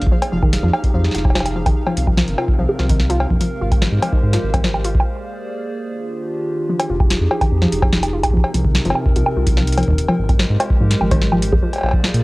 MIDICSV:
0, 0, Header, 1, 6, 480
1, 0, Start_track
1, 0, Tempo, 410959
1, 139, Time_signature, 4, 2, 24, 8
1, 14292, End_track
2, 0, Start_track
2, 0, Title_t, "Synth texture"
2, 0, Program_c, 0, 99
2, 0, Note_on_c, 0, 77, 80
2, 5899, Note_off_c, 0, 77, 0
2, 14292, End_track
3, 0, Start_track
3, 0, Title_t, "Ambient pad"
3, 0, Program_c, 1, 92
3, 0, Note_on_c, 1, 58, 79
3, 0, Note_on_c, 1, 68, 70
3, 0, Note_on_c, 1, 72, 69
3, 0, Note_on_c, 1, 74, 84
3, 119, Note_off_c, 1, 58, 0
3, 119, Note_off_c, 1, 72, 0
3, 119, Note_off_c, 1, 74, 0
3, 139, Note_on_c, 1, 53, 73
3, 139, Note_on_c, 1, 63, 67
3, 139, Note_on_c, 1, 67, 71
3, 2020, Note_off_c, 1, 68, 0
3, 2040, Note_off_c, 1, 53, 0
3, 2040, Note_off_c, 1, 67, 0
3, 2055, Note_on_c, 1, 60, 70
3, 2056, Note_on_c, 1, 48, 75
3, 2056, Note_on_c, 1, 70, 86
3, 3940, Note_off_c, 1, 63, 0
3, 3958, Note_off_c, 1, 48, 0
3, 3958, Note_off_c, 1, 60, 0
3, 3981, Note_on_c, 1, 56, 79
3, 3981, Note_on_c, 1, 67, 68
3, 3981, Note_on_c, 1, 72, 83
3, 5859, Note_off_c, 1, 70, 0
3, 5881, Note_off_c, 1, 56, 0
3, 5881, Note_off_c, 1, 67, 0
3, 5881, Note_off_c, 1, 72, 0
3, 5897, Note_on_c, 1, 68, 67
3, 5897, Note_on_c, 1, 72, 66
3, 5898, Note_on_c, 1, 74, 79
3, 5899, Note_on_c, 1, 58, 74
3, 6848, Note_off_c, 1, 68, 0
3, 6848, Note_off_c, 1, 72, 0
3, 6849, Note_off_c, 1, 58, 0
3, 6849, Note_off_c, 1, 74, 0
3, 6858, Note_on_c, 1, 51, 78
3, 6859, Note_on_c, 1, 62, 70
3, 6859, Note_on_c, 1, 67, 86
3, 6860, Note_on_c, 1, 65, 71
3, 7805, Note_off_c, 1, 67, 0
3, 7809, Note_off_c, 1, 51, 0
3, 7810, Note_off_c, 1, 62, 0
3, 7810, Note_off_c, 1, 65, 0
3, 7818, Note_on_c, 1, 63, 72
3, 7819, Note_on_c, 1, 53, 81
3, 7819, Note_on_c, 1, 67, 72
3, 7820, Note_on_c, 1, 68, 88
3, 9720, Note_off_c, 1, 53, 0
3, 9720, Note_off_c, 1, 67, 0
3, 9720, Note_off_c, 1, 68, 0
3, 9740, Note_on_c, 1, 60, 71
3, 9741, Note_on_c, 1, 48, 82
3, 9741, Note_on_c, 1, 70, 88
3, 11620, Note_off_c, 1, 63, 0
3, 11641, Note_off_c, 1, 48, 0
3, 11641, Note_off_c, 1, 60, 0
3, 11657, Note_on_c, 1, 56, 77
3, 11657, Note_on_c, 1, 67, 73
3, 11658, Note_on_c, 1, 72, 89
3, 13542, Note_off_c, 1, 70, 0
3, 13558, Note_off_c, 1, 67, 0
3, 13559, Note_off_c, 1, 56, 0
3, 13581, Note_on_c, 1, 58, 77
3, 13581, Note_on_c, 1, 68, 72
3, 13583, Note_on_c, 1, 74, 91
3, 14292, Note_off_c, 1, 58, 0
3, 14292, Note_off_c, 1, 68, 0
3, 14292, Note_off_c, 1, 72, 0
3, 14292, Note_off_c, 1, 74, 0
3, 14292, End_track
4, 0, Start_track
4, 0, Title_t, "Synth arpeggio sound"
4, 0, Program_c, 2, 84
4, 138, Note_on_c, 2, 53, 83
4, 178, Note_off_c, 2, 53, 0
4, 379, Note_on_c, 2, 53, 75
4, 444, Note_off_c, 2, 53, 0
4, 499, Note_on_c, 2, 51, 81
4, 597, Note_off_c, 2, 51, 0
4, 740, Note_on_c, 2, 53, 100
4, 838, Note_off_c, 2, 53, 0
4, 978, Note_on_c, 2, 41, 73
4, 1044, Note_off_c, 2, 41, 0
4, 1100, Note_on_c, 2, 53, 83
4, 1165, Note_off_c, 2, 53, 0
4, 1340, Note_on_c, 2, 65, 76
4, 1438, Note_off_c, 2, 65, 0
4, 1579, Note_on_c, 2, 53, 84
4, 1618, Note_off_c, 2, 53, 0
4, 1820, Note_on_c, 2, 53, 75
4, 1885, Note_off_c, 2, 53, 0
4, 1940, Note_on_c, 2, 51, 71
4, 2038, Note_off_c, 2, 51, 0
4, 2180, Note_on_c, 2, 53, 95
4, 2278, Note_off_c, 2, 53, 0
4, 2419, Note_on_c, 2, 41, 77
4, 2484, Note_off_c, 2, 41, 0
4, 2537, Note_on_c, 2, 53, 85
4, 2604, Note_off_c, 2, 53, 0
4, 2778, Note_on_c, 2, 65, 76
4, 2877, Note_off_c, 2, 65, 0
4, 3020, Note_on_c, 2, 53, 80
4, 3059, Note_off_c, 2, 53, 0
4, 3258, Note_on_c, 2, 53, 76
4, 3324, Note_off_c, 2, 53, 0
4, 3378, Note_on_c, 2, 51, 80
4, 3477, Note_off_c, 2, 51, 0
4, 3617, Note_on_c, 2, 53, 106
4, 3716, Note_off_c, 2, 53, 0
4, 3858, Note_on_c, 2, 41, 77
4, 3924, Note_off_c, 2, 41, 0
4, 3979, Note_on_c, 2, 53, 83
4, 4044, Note_off_c, 2, 53, 0
4, 4220, Note_on_c, 2, 65, 74
4, 4318, Note_off_c, 2, 65, 0
4, 4458, Note_on_c, 2, 53, 81
4, 4498, Note_off_c, 2, 53, 0
4, 4697, Note_on_c, 2, 53, 73
4, 4764, Note_off_c, 2, 53, 0
4, 4818, Note_on_c, 2, 51, 71
4, 4917, Note_off_c, 2, 51, 0
4, 5058, Note_on_c, 2, 53, 105
4, 5157, Note_off_c, 2, 53, 0
4, 5298, Note_on_c, 2, 41, 79
4, 5364, Note_off_c, 2, 41, 0
4, 5419, Note_on_c, 2, 53, 90
4, 5484, Note_off_c, 2, 53, 0
4, 5659, Note_on_c, 2, 65, 77
4, 5757, Note_off_c, 2, 65, 0
4, 7819, Note_on_c, 2, 53, 85
4, 7885, Note_off_c, 2, 53, 0
4, 8059, Note_on_c, 2, 65, 78
4, 8157, Note_off_c, 2, 65, 0
4, 8299, Note_on_c, 2, 53, 83
4, 8338, Note_off_c, 2, 53, 0
4, 8540, Note_on_c, 2, 53, 77
4, 8605, Note_off_c, 2, 53, 0
4, 8660, Note_on_c, 2, 51, 74
4, 8758, Note_off_c, 2, 51, 0
4, 8899, Note_on_c, 2, 53, 106
4, 8997, Note_off_c, 2, 53, 0
4, 9138, Note_on_c, 2, 41, 80
4, 9204, Note_off_c, 2, 41, 0
4, 9259, Note_on_c, 2, 53, 85
4, 9325, Note_off_c, 2, 53, 0
4, 9499, Note_on_c, 2, 65, 81
4, 9597, Note_off_c, 2, 65, 0
4, 9738, Note_on_c, 2, 53, 81
4, 9778, Note_off_c, 2, 53, 0
4, 9978, Note_on_c, 2, 53, 80
4, 10044, Note_off_c, 2, 53, 0
4, 10098, Note_on_c, 2, 51, 78
4, 10197, Note_off_c, 2, 51, 0
4, 10339, Note_on_c, 2, 53, 100
4, 10437, Note_off_c, 2, 53, 0
4, 10580, Note_on_c, 2, 41, 74
4, 10645, Note_off_c, 2, 41, 0
4, 10701, Note_on_c, 2, 53, 87
4, 10765, Note_off_c, 2, 53, 0
4, 10941, Note_on_c, 2, 65, 76
4, 11038, Note_off_c, 2, 65, 0
4, 11181, Note_on_c, 2, 53, 86
4, 11219, Note_off_c, 2, 53, 0
4, 11422, Note_on_c, 2, 53, 76
4, 11486, Note_off_c, 2, 53, 0
4, 11541, Note_on_c, 2, 51, 75
4, 11638, Note_off_c, 2, 51, 0
4, 11782, Note_on_c, 2, 53, 101
4, 11878, Note_off_c, 2, 53, 0
4, 12021, Note_on_c, 2, 41, 79
4, 12085, Note_off_c, 2, 41, 0
4, 12143, Note_on_c, 2, 53, 83
4, 12206, Note_off_c, 2, 53, 0
4, 12381, Note_on_c, 2, 65, 77
4, 12478, Note_off_c, 2, 65, 0
4, 12621, Note_on_c, 2, 53, 82
4, 12659, Note_off_c, 2, 53, 0
4, 12860, Note_on_c, 2, 53, 73
4, 12925, Note_off_c, 2, 53, 0
4, 12982, Note_on_c, 2, 51, 84
4, 13079, Note_off_c, 2, 51, 0
4, 13221, Note_on_c, 2, 53, 108
4, 13318, Note_off_c, 2, 53, 0
4, 13460, Note_on_c, 2, 41, 76
4, 13525, Note_off_c, 2, 41, 0
4, 13579, Note_on_c, 2, 53, 86
4, 13645, Note_off_c, 2, 53, 0
4, 13821, Note_on_c, 2, 65, 79
4, 13918, Note_off_c, 2, 65, 0
4, 14059, Note_on_c, 2, 53, 86
4, 14098, Note_off_c, 2, 53, 0
4, 14292, End_track
5, 0, Start_track
5, 0, Title_t, "Analog synth bass"
5, 0, Program_c, 3, 38
5, 18, Note_on_c, 3, 32, 97
5, 106, Note_off_c, 3, 32, 0
5, 378, Note_on_c, 3, 29, 99
5, 686, Note_off_c, 3, 29, 0
5, 738, Note_on_c, 3, 41, 102
5, 826, Note_off_c, 3, 41, 0
5, 1101, Note_on_c, 3, 41, 94
5, 1275, Note_off_c, 3, 41, 0
5, 1340, Note_on_c, 3, 29, 93
5, 2007, Note_off_c, 3, 29, 0
5, 2301, Note_on_c, 3, 36, 95
5, 2608, Note_off_c, 3, 36, 0
5, 2659, Note_on_c, 3, 31, 102
5, 2746, Note_off_c, 3, 31, 0
5, 3021, Note_on_c, 3, 36, 92
5, 3107, Note_off_c, 3, 36, 0
5, 3261, Note_on_c, 3, 36, 99
5, 3808, Note_off_c, 3, 36, 0
5, 3859, Note_on_c, 3, 34, 97
5, 3946, Note_off_c, 3, 34, 0
5, 4220, Note_on_c, 3, 32, 95
5, 4527, Note_off_c, 3, 32, 0
5, 4578, Note_on_c, 3, 44, 101
5, 4666, Note_off_c, 3, 44, 0
5, 4939, Note_on_c, 3, 44, 99
5, 5114, Note_off_c, 3, 44, 0
5, 5180, Note_on_c, 3, 32, 95
5, 5847, Note_off_c, 3, 32, 0
5, 8061, Note_on_c, 3, 29, 99
5, 8368, Note_off_c, 3, 29, 0
5, 8420, Note_on_c, 3, 41, 102
5, 8507, Note_off_c, 3, 41, 0
5, 8779, Note_on_c, 3, 41, 99
5, 8954, Note_off_c, 3, 41, 0
5, 9019, Note_on_c, 3, 29, 92
5, 9687, Note_off_c, 3, 29, 0
5, 9979, Note_on_c, 3, 36, 96
5, 10287, Note_off_c, 3, 36, 0
5, 10340, Note_on_c, 3, 31, 102
5, 10427, Note_off_c, 3, 31, 0
5, 10697, Note_on_c, 3, 36, 88
5, 10786, Note_off_c, 3, 36, 0
5, 10940, Note_on_c, 3, 36, 108
5, 11487, Note_off_c, 3, 36, 0
5, 11540, Note_on_c, 3, 34, 100
5, 11627, Note_off_c, 3, 34, 0
5, 11901, Note_on_c, 3, 32, 97
5, 12208, Note_off_c, 3, 32, 0
5, 12261, Note_on_c, 3, 44, 106
5, 12348, Note_off_c, 3, 44, 0
5, 12620, Note_on_c, 3, 44, 96
5, 12795, Note_off_c, 3, 44, 0
5, 12859, Note_on_c, 3, 32, 96
5, 13527, Note_off_c, 3, 32, 0
5, 13820, Note_on_c, 3, 34, 96
5, 14127, Note_off_c, 3, 34, 0
5, 14179, Note_on_c, 3, 46, 101
5, 14267, Note_off_c, 3, 46, 0
5, 14292, End_track
6, 0, Start_track
6, 0, Title_t, "Drums"
6, 18, Note_on_c, 9, 42, 53
6, 78, Note_on_c, 9, 36, 124
6, 135, Note_off_c, 9, 42, 0
6, 195, Note_off_c, 9, 36, 0
6, 258, Note_on_c, 9, 42, 74
6, 258, Note_on_c, 9, 56, 84
6, 375, Note_off_c, 9, 42, 0
6, 375, Note_off_c, 9, 56, 0
6, 497, Note_on_c, 9, 60, 35
6, 498, Note_on_c, 9, 36, 108
6, 614, Note_off_c, 9, 60, 0
6, 615, Note_off_c, 9, 36, 0
6, 618, Note_on_c, 9, 38, 114
6, 618, Note_on_c, 9, 42, 87
6, 735, Note_off_c, 9, 38, 0
6, 735, Note_off_c, 9, 42, 0
6, 858, Note_on_c, 9, 56, 90
6, 858, Note_on_c, 9, 60, 76
6, 975, Note_off_c, 9, 56, 0
6, 975, Note_off_c, 9, 60, 0
6, 978, Note_on_c, 9, 36, 99
6, 979, Note_on_c, 9, 42, 48
6, 1095, Note_off_c, 9, 36, 0
6, 1095, Note_off_c, 9, 42, 0
6, 1220, Note_on_c, 9, 38, 57
6, 1299, Note_off_c, 9, 38, 0
6, 1299, Note_on_c, 9, 38, 48
6, 1340, Note_on_c, 9, 42, 78
6, 1381, Note_off_c, 9, 38, 0
6, 1381, Note_on_c, 9, 38, 38
6, 1456, Note_off_c, 9, 42, 0
6, 1458, Note_on_c, 9, 36, 111
6, 1460, Note_on_c, 9, 56, 41
6, 1497, Note_off_c, 9, 38, 0
6, 1520, Note_off_c, 9, 56, 0
6, 1520, Note_on_c, 9, 56, 56
6, 1575, Note_off_c, 9, 36, 0
6, 1581, Note_off_c, 9, 56, 0
6, 1581, Note_on_c, 9, 38, 113
6, 1581, Note_on_c, 9, 56, 62
6, 1640, Note_off_c, 9, 56, 0
6, 1640, Note_on_c, 9, 56, 75
6, 1698, Note_off_c, 9, 38, 0
6, 1700, Note_on_c, 9, 42, 87
6, 1700, Note_on_c, 9, 60, 59
6, 1757, Note_off_c, 9, 56, 0
6, 1817, Note_off_c, 9, 42, 0
6, 1817, Note_off_c, 9, 60, 0
6, 1939, Note_on_c, 9, 36, 122
6, 1940, Note_on_c, 9, 42, 77
6, 1940, Note_on_c, 9, 60, 78
6, 2056, Note_off_c, 9, 36, 0
6, 2057, Note_off_c, 9, 42, 0
6, 2057, Note_off_c, 9, 60, 0
6, 2179, Note_on_c, 9, 56, 83
6, 2296, Note_off_c, 9, 56, 0
6, 2300, Note_on_c, 9, 42, 85
6, 2417, Note_off_c, 9, 42, 0
6, 2419, Note_on_c, 9, 36, 98
6, 2421, Note_on_c, 9, 60, 37
6, 2536, Note_off_c, 9, 36, 0
6, 2538, Note_off_c, 9, 60, 0
6, 2539, Note_on_c, 9, 38, 111
6, 2656, Note_off_c, 9, 38, 0
6, 2660, Note_on_c, 9, 42, 46
6, 2777, Note_off_c, 9, 42, 0
6, 2781, Note_on_c, 9, 56, 93
6, 2781, Note_on_c, 9, 60, 77
6, 2897, Note_off_c, 9, 56, 0
6, 2897, Note_off_c, 9, 60, 0
6, 2899, Note_on_c, 9, 36, 111
6, 3016, Note_off_c, 9, 36, 0
6, 3140, Note_on_c, 9, 60, 75
6, 3257, Note_off_c, 9, 60, 0
6, 3260, Note_on_c, 9, 38, 60
6, 3377, Note_off_c, 9, 38, 0
6, 3379, Note_on_c, 9, 36, 111
6, 3379, Note_on_c, 9, 42, 92
6, 3496, Note_off_c, 9, 36, 0
6, 3496, Note_off_c, 9, 42, 0
6, 3499, Note_on_c, 9, 38, 108
6, 3616, Note_off_c, 9, 38, 0
6, 3618, Note_on_c, 9, 42, 76
6, 3735, Note_off_c, 9, 42, 0
6, 3739, Note_on_c, 9, 56, 84
6, 3855, Note_off_c, 9, 56, 0
6, 3859, Note_on_c, 9, 36, 104
6, 3976, Note_off_c, 9, 36, 0
6, 3978, Note_on_c, 9, 42, 88
6, 4095, Note_off_c, 9, 42, 0
6, 4339, Note_on_c, 9, 36, 113
6, 4340, Note_on_c, 9, 42, 54
6, 4340, Note_on_c, 9, 60, 38
6, 4456, Note_off_c, 9, 36, 0
6, 4457, Note_off_c, 9, 42, 0
6, 4457, Note_off_c, 9, 60, 0
6, 4458, Note_on_c, 9, 38, 113
6, 4575, Note_off_c, 9, 38, 0
6, 4700, Note_on_c, 9, 42, 75
6, 4700, Note_on_c, 9, 56, 98
6, 4816, Note_off_c, 9, 42, 0
6, 4816, Note_off_c, 9, 56, 0
6, 4819, Note_on_c, 9, 36, 110
6, 4936, Note_off_c, 9, 36, 0
6, 5059, Note_on_c, 9, 38, 59
6, 5059, Note_on_c, 9, 42, 88
6, 5176, Note_off_c, 9, 38, 0
6, 5176, Note_off_c, 9, 42, 0
6, 5299, Note_on_c, 9, 36, 97
6, 5300, Note_on_c, 9, 42, 78
6, 5300, Note_on_c, 9, 56, 96
6, 5416, Note_off_c, 9, 36, 0
6, 5417, Note_off_c, 9, 42, 0
6, 5417, Note_off_c, 9, 56, 0
6, 5420, Note_on_c, 9, 38, 113
6, 5537, Note_off_c, 9, 38, 0
6, 5539, Note_on_c, 9, 60, 64
6, 5655, Note_off_c, 9, 60, 0
6, 5658, Note_on_c, 9, 42, 90
6, 5775, Note_off_c, 9, 42, 0
6, 5779, Note_on_c, 9, 36, 120
6, 5839, Note_on_c, 9, 60, 81
6, 5896, Note_off_c, 9, 36, 0
6, 5956, Note_off_c, 9, 60, 0
6, 7938, Note_on_c, 9, 42, 82
6, 7938, Note_on_c, 9, 56, 81
6, 8055, Note_off_c, 9, 42, 0
6, 8055, Note_off_c, 9, 56, 0
6, 8179, Note_on_c, 9, 36, 113
6, 8179, Note_on_c, 9, 60, 39
6, 8296, Note_off_c, 9, 36, 0
6, 8296, Note_off_c, 9, 60, 0
6, 8299, Note_on_c, 9, 38, 119
6, 8299, Note_on_c, 9, 42, 97
6, 8416, Note_off_c, 9, 38, 0
6, 8416, Note_off_c, 9, 42, 0
6, 8539, Note_on_c, 9, 56, 95
6, 8656, Note_off_c, 9, 56, 0
6, 8659, Note_on_c, 9, 36, 99
6, 8660, Note_on_c, 9, 42, 56
6, 8660, Note_on_c, 9, 60, 83
6, 8776, Note_off_c, 9, 36, 0
6, 8776, Note_off_c, 9, 42, 0
6, 8776, Note_off_c, 9, 60, 0
6, 8899, Note_on_c, 9, 38, 65
6, 9016, Note_off_c, 9, 38, 0
6, 9021, Note_on_c, 9, 42, 83
6, 9138, Note_off_c, 9, 42, 0
6, 9139, Note_on_c, 9, 36, 114
6, 9139, Note_on_c, 9, 56, 94
6, 9256, Note_off_c, 9, 36, 0
6, 9256, Note_off_c, 9, 56, 0
6, 9258, Note_on_c, 9, 38, 124
6, 9375, Note_off_c, 9, 38, 0
6, 9379, Note_on_c, 9, 42, 99
6, 9379, Note_on_c, 9, 60, 66
6, 9496, Note_off_c, 9, 42, 0
6, 9496, Note_off_c, 9, 60, 0
6, 9618, Note_on_c, 9, 42, 84
6, 9618, Note_on_c, 9, 60, 85
6, 9619, Note_on_c, 9, 36, 56
6, 9699, Note_off_c, 9, 36, 0
6, 9699, Note_on_c, 9, 36, 76
6, 9735, Note_off_c, 9, 42, 0
6, 9735, Note_off_c, 9, 60, 0
6, 9779, Note_off_c, 9, 36, 0
6, 9779, Note_on_c, 9, 36, 96
6, 9858, Note_on_c, 9, 56, 82
6, 9896, Note_off_c, 9, 36, 0
6, 9975, Note_off_c, 9, 56, 0
6, 9979, Note_on_c, 9, 42, 94
6, 10095, Note_off_c, 9, 42, 0
6, 10099, Note_on_c, 9, 36, 106
6, 10216, Note_off_c, 9, 36, 0
6, 10218, Note_on_c, 9, 38, 127
6, 10335, Note_off_c, 9, 38, 0
6, 10338, Note_on_c, 9, 42, 55
6, 10398, Note_on_c, 9, 56, 90
6, 10455, Note_off_c, 9, 42, 0
6, 10458, Note_on_c, 9, 60, 81
6, 10515, Note_off_c, 9, 56, 0
6, 10575, Note_off_c, 9, 60, 0
6, 10580, Note_on_c, 9, 36, 116
6, 10696, Note_off_c, 9, 36, 0
6, 10698, Note_on_c, 9, 42, 79
6, 10815, Note_off_c, 9, 42, 0
6, 10818, Note_on_c, 9, 60, 84
6, 10935, Note_off_c, 9, 60, 0
6, 11058, Note_on_c, 9, 42, 100
6, 11060, Note_on_c, 9, 36, 125
6, 11175, Note_off_c, 9, 42, 0
6, 11177, Note_off_c, 9, 36, 0
6, 11179, Note_on_c, 9, 38, 122
6, 11296, Note_off_c, 9, 38, 0
6, 11300, Note_on_c, 9, 42, 82
6, 11359, Note_off_c, 9, 42, 0
6, 11359, Note_on_c, 9, 42, 67
6, 11419, Note_off_c, 9, 42, 0
6, 11419, Note_on_c, 9, 42, 55
6, 11419, Note_on_c, 9, 56, 83
6, 11480, Note_off_c, 9, 42, 0
6, 11480, Note_on_c, 9, 42, 46
6, 11535, Note_off_c, 9, 56, 0
6, 11540, Note_on_c, 9, 36, 106
6, 11570, Note_off_c, 9, 36, 0
6, 11570, Note_on_c, 9, 36, 88
6, 11597, Note_off_c, 9, 42, 0
6, 11600, Note_off_c, 9, 36, 0
6, 11600, Note_on_c, 9, 36, 73
6, 11630, Note_off_c, 9, 36, 0
6, 11630, Note_on_c, 9, 36, 58
6, 11660, Note_off_c, 9, 36, 0
6, 11660, Note_on_c, 9, 36, 49
6, 11660, Note_on_c, 9, 42, 98
6, 11690, Note_off_c, 9, 36, 0
6, 11690, Note_on_c, 9, 36, 38
6, 11720, Note_off_c, 9, 36, 0
6, 11720, Note_on_c, 9, 36, 32
6, 11750, Note_off_c, 9, 36, 0
6, 11750, Note_on_c, 9, 36, 27
6, 11776, Note_off_c, 9, 42, 0
6, 11778, Note_on_c, 9, 56, 83
6, 11867, Note_off_c, 9, 36, 0
6, 11895, Note_off_c, 9, 56, 0
6, 12019, Note_on_c, 9, 42, 55
6, 12019, Note_on_c, 9, 60, 36
6, 12020, Note_on_c, 9, 36, 120
6, 12136, Note_off_c, 9, 42, 0
6, 12136, Note_off_c, 9, 60, 0
6, 12137, Note_off_c, 9, 36, 0
6, 12139, Note_on_c, 9, 38, 127
6, 12256, Note_off_c, 9, 38, 0
6, 12380, Note_on_c, 9, 42, 81
6, 12380, Note_on_c, 9, 56, 88
6, 12380, Note_on_c, 9, 60, 77
6, 12497, Note_off_c, 9, 42, 0
6, 12497, Note_off_c, 9, 56, 0
6, 12497, Note_off_c, 9, 60, 0
6, 12500, Note_on_c, 9, 36, 122
6, 12617, Note_off_c, 9, 36, 0
6, 12739, Note_on_c, 9, 38, 69
6, 12739, Note_on_c, 9, 42, 99
6, 12856, Note_off_c, 9, 38, 0
6, 12856, Note_off_c, 9, 42, 0
6, 12858, Note_on_c, 9, 60, 61
6, 12975, Note_off_c, 9, 60, 0
6, 12980, Note_on_c, 9, 36, 110
6, 12980, Note_on_c, 9, 42, 81
6, 12980, Note_on_c, 9, 56, 94
6, 13097, Note_off_c, 9, 36, 0
6, 13097, Note_off_c, 9, 42, 0
6, 13097, Note_off_c, 9, 56, 0
6, 13099, Note_on_c, 9, 38, 121
6, 13216, Note_off_c, 9, 38, 0
6, 13221, Note_on_c, 9, 60, 63
6, 13338, Note_off_c, 9, 60, 0
6, 13341, Note_on_c, 9, 42, 98
6, 13458, Note_off_c, 9, 42, 0
6, 13460, Note_on_c, 9, 36, 127
6, 13461, Note_on_c, 9, 60, 81
6, 13577, Note_off_c, 9, 36, 0
6, 13578, Note_off_c, 9, 60, 0
6, 13702, Note_on_c, 9, 42, 53
6, 13702, Note_on_c, 9, 56, 36
6, 13732, Note_off_c, 9, 56, 0
6, 13732, Note_on_c, 9, 56, 42
6, 13762, Note_off_c, 9, 56, 0
6, 13762, Note_on_c, 9, 56, 46
6, 13792, Note_off_c, 9, 56, 0
6, 13792, Note_on_c, 9, 56, 53
6, 13818, Note_off_c, 9, 42, 0
6, 13822, Note_off_c, 9, 56, 0
6, 13822, Note_on_c, 9, 56, 59
6, 13853, Note_off_c, 9, 56, 0
6, 13853, Note_on_c, 9, 56, 63
6, 13882, Note_off_c, 9, 56, 0
6, 13882, Note_on_c, 9, 56, 67
6, 13912, Note_off_c, 9, 56, 0
6, 13912, Note_on_c, 9, 56, 71
6, 13940, Note_on_c, 9, 36, 125
6, 14029, Note_off_c, 9, 56, 0
6, 14057, Note_off_c, 9, 36, 0
6, 14062, Note_on_c, 9, 38, 127
6, 14179, Note_off_c, 9, 38, 0
6, 14182, Note_on_c, 9, 42, 80
6, 14292, Note_off_c, 9, 42, 0
6, 14292, End_track
0, 0, End_of_file